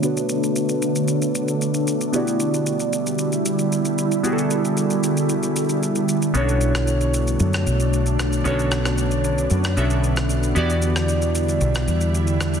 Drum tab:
SH |xxxxxxxxxxxxxxxx|xxxxxxxxxxxxxxxx|xxxxxxxxxxxxxxxx|xxxxxxxxxxxxxxxx|
SD |----------------|----------------|----------------|---r-----r----r-|

SH |xxxxxxxxxxxxxxxx|xxxxxxxxxxxxxxxx|
SD |--rr-----r---r--|---r-----r----r-|